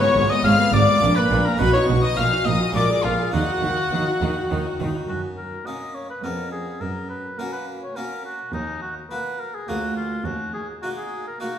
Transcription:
Already playing: harpsichord G#2 B3 F4
0.01 viola section B3, oboe C#5, violin section C#5 C#6
0.15 double bass section G#1, cello section G#2, harpsichord G#2, viola section G#3
0.30 viola section B3, oboe D#5, violin section D#5 D#6
0.44 double bass section G#1, cello section G#2, harpsichord G#2, viola section G#3, oboe F5, violin section F5 F6
0.59 viola section B3
0.72 double bass section G#1, cello section G#2, harpsichord G#2, viola section G#3, oboe D5, violin section D5 D6
0.88 viola section B3
0.97 cello section A#2, harpsichord A#3 F4
1.02 double bass section A#1, harpsichord A#2, viola section D4
1.16 viola section A#3, oboe B4, violin section B4 B5
1.30 double bass section A#1, cello section A#2, harpsichord A#2, viola section D4
1.45 viola section A#3, violin section A#4 A#5, oboe A#4
1.57 double bass section B1, cello section B2, harpsichord B2 D#4 F#4, viola section F#4, oboe B4, violin section B4 B5
1.73 viola section D#4, oboe C#5, violin section C#5 C#6
1.88 double bass section B1, cello section B2, harpsichord B2, viola section F#4
2.02 viola section D#4, violin section D#5 D#6, oboe D#5
2.15 double bass section A#1, cello section A#2, harpsichord A#2 D#4 F#4, viola section D#4, oboe F5, violin section F5 F6
2.33 viola section F#4
2.45 double bass section A#1, cello section A#2, harpsichord A#2, viola section D#4, violin section D#5 D#6, oboe D#5
2.61 viola section F#4
2.71 cello section A#2, harpsichord G#3 A#3 F4, violin section D6
2.75 double bass section A#1, harpsichord A#2, viola section A#4, violin section D5, oboe D5
2.91 viola section G#4
3.04 double bass section A#1, cello section A#2, harpsichord A#2, violin section F4 F5, oboe F4, viola section A#4
3.20 viola section G#4
3.31 double bass section D#2, cello section D#3, harpsichord D#3 A#3 D#4, viola section D#4, oboe F#4, violin section F#4 F#5
3.49 viola section F#4
3.62 double bass section D#2, cello section D#3, harpsichord D#3, viola section D#4
3.78 viola section F#4
3.92 double bass section D#2, cello section D#3, harpsichord D#3, viola section D#4
4.07 viola section F#4
4.21 double bass section D#2, cello section D#3, harpsichord D#3, viola section D#4
4.36 viola section F#4
4.50 double bass section D#2, cello section D#3, harpsichord D#3, viola section D#4
4.66 viola section F#4
4.79 double bass section D#2, cello section D#3, harpsichord D#3, viola section D#4
4.95 viola section F#4
5.08 cello section F#2, harpsichord F#2, oboe F#4
5.37 oboe A#4
5.66 viola section A#3, harpsichord A#3 C#4, violin section F#4 C#6, oboe D#5
5.95 oboe C#5
6.10 oboe B4
6.23 cello section F2, harpsichord F2 B3 C#4, viola section B3, violin section G#4 C#6, oboe A#4
6.52 oboe G#4
6.81 cello section F#2, harpsichord F#2, oboe A#4
7.09 oboe B4
7.38 harpsichord A#3 C#4 F#4, viola section A#3, violin section F#4 A#5, oboe A#4
7.53 oboe B4
7.83 oboe C#5
7.96 viola section A#3, harpsichord A#3 C#4 F#4, violin section F#4 A#5, oboe A#4
8.25 oboe F#4
8.53 harpsichord D#2, cello section D#2, oboe D#4
8.82 oboe F#4
9.10 harpsichord A#3 F#4, viola section A#3, violin section F#4 A#5, oboe B4
9.40 oboe A#4
9.54 oboe G#4
9.68 harpsichord D2 A#3 F4 G#4, cello section D2, viola section A#3, oboe F#4, violin section G#4 A#5
9.97 oboe F4
10.25 harpsichord D#2, cello section D#2, oboe F#4
10.54 oboe G#4
10.82 viola section A#3, harpsichord A#3 D#4 F#4, oboe F#4, violin section F#4 A#5
10.97 oboe G#4
11.27 oboe A#4
11.40 harpsichord A#3 D#4 F#4, viola section A#3, oboe F#4, violin section F#4

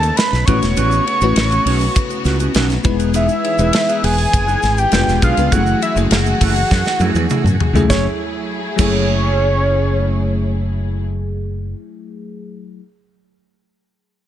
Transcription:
Already playing: string section C#3 A3 D#4, fm electric piano A3 C#4 D#4 G#4 B4, analog synth lead A5
0.03 ride, shaker
0.16 analog synth lead B5, snare, ride, shaker
0.32 fretless electric bass B1, muted clean electric guitar stroke, snare, ride, shaker
0.46 fretless electric bass A1, fm electric piano A3 C#4 E4 F#4 B4, string section B3 F#4, clean electric guitar C#4 F#4 B4, analog synth lead C#6, kick, ride, shaker
0.62 fretless electric bass E1, muted clean electric guitar stroke, snare, ride, shaker
0.76 fretless electric bass A1, clean electric guitar C#4 F#4 B4, ride, shaker
0.91 shaker
1.06 muted clean electric guitar stroke, ride
1.21 fretless electric bass A1, fm electric piano A3 C#4 E4 F#4 B4, clean electric guitar C#4 F#4 B4, ride, shaker
1.36 fretless electric bass A1, snare, ride, shaker
1.51 clean electric guitar C#4 F#4 B4, ride, shaker
1.66 fretless electric bass B1, clean electric guitar C#4 F#4 C#5, open hi-hat, ride
1.81 muted clean electric guitar stroke, ride, shaker
1.96 muted clean electric guitar stroke, kick, hi-hat pedal, ride, shaker
2.10 muted clean electric guitar stroke, ride, shaker
2.25 fretless electric bass C#2, clean electric guitar C#4 F#4 B4, snare, ride, shaker
2.40 clean electric guitar C#4 F#4 B4, ride, shaker
2.54 fretless electric bass B1, clean electric guitar C#4 F#4 B4, snare, ride, shaker
2.69 muted clean electric guitar stroke, snare, ride, shaker
2.84 fretless electric bass E1, string section E3 G#4, fm electric piano G#3 B3 D#4 E4 B4, muted clean electric guitar stroke, kick, ride, shaker
2.99 clean electric guitar D#4 G#4 B4, ride, shaker
3.14 clean electric guitar D#4 G#4 B4, analog synth lead E5, ride, shaker
3.29 muted clean electric guitar stroke, shaker
3.44 clean electric guitar D#4 G#4 C#5, ride
3.58 fretless electric bass E1, fm electric piano G#3 B3 E4 B4, clean electric guitar D#4 G#4 B4, ride, shaker
3.73 snare, ride, shaker
3.88 clean electric guitar D#4 G#4 B4, ride, shaker
4.03 fretless electric bass E1, clean electric guitar D#4 G#4 B4, analog synth lead G#5, open hi-hat, ride
4.18 muted clean electric guitar stroke, ride, shaker
4.33 fretless electric bass F#1, muted clean electric guitar stroke, kick, hi-hat pedal, ride, shaker
4.47 clean electric guitar D#4 G#4 B4, shaker
4.62 fretless electric bass G#1, muted clean electric guitar stroke, snare, ride, shaker
4.78 analog synth lead G5, muted clean electric guitar stroke, ride, shaker
4.92 fretless electric bass F1, string section D3 F4, fm electric piano G#3 B3 D4 F4 B4, snare, ride, shaker
5.07 fretless electric bass E1, muted clean electric guitar stroke, snare, shaker
5.22 fretless electric bass B1, clean electric guitar D4 G#4 B4, analog synth lead F5, kick, ride, shaker
5.37 fretless electric bass C#2, fm electric piano G#3 B3 D4 F4 B4, muted clean electric guitar stroke, ride, shaker
5.51 fretless electric bass F#1, string section E3 A3 F#4, fm electric piano F#3 A3 C#4 E4 G#4, clean electric guitar A3 E4 G#4, analog synth lead F#5, kick, ride, shaker
5.66 shaker
5.82 analog synth lead E5, ride, shaker
5.96 fretless electric bass F#1, fm electric piano F#3 A3 C#4 E4 G#4, clean electric guitar A3 E4 G#4, ride, shaker
6.11 fretless electric bass F#1, analog synth lead F#5, snare, ride, shaker
6.26 clean electric guitar A3 E4 G#4, shaker
6.41 fretless electric bass F#1, clean electric guitar A3 E4 A4, kick, open hi-hat, ride, shaker
6.56 muted clean electric guitar stroke, ride, shaker
6.70 fretless electric bass F#2, muted clean electric guitar stroke, kick, snare, shaker
6.85 muted clean electric guitar stroke, snare, shaker
6.99 fretless electric bass F#2, clean electric guitar A3 E4 G#4, high tom, shaker
7.15 fretless electric bass E2, clean electric guitar A3 E4 G#4, high tom, shaker
7.30 clean electric guitar A3 E4 G#4, mid tom, shaker
7.44 fretless electric bass F#2, muted clean electric guitar stroke, mid tom, shaker
7.60 muted clean electric guitar stroke, floor tom
7.73 fretless electric bass C#2, fm electric piano F#3 A3 C#4 E4 G#4, clean electric guitar A3 E4 G#4, floor tom, shaker
7.88 fretless electric bass F#1, fm electric piano F#3 A3 E4, string section F#3 A3 E4 G#4, clean electric guitar A3 E4, analog synth lead C#5, kick, snare, shaker
7.92 fm electric piano G#4, clean electric guitar G#4
8.76 fretless electric bass F#1, fm electric piano F#3 A3 E4, clean electric guitar A3 E4, analog synth lead C#5, kick, crash, shaker
8.81 fm electric piano G#4, clean electric guitar G#4

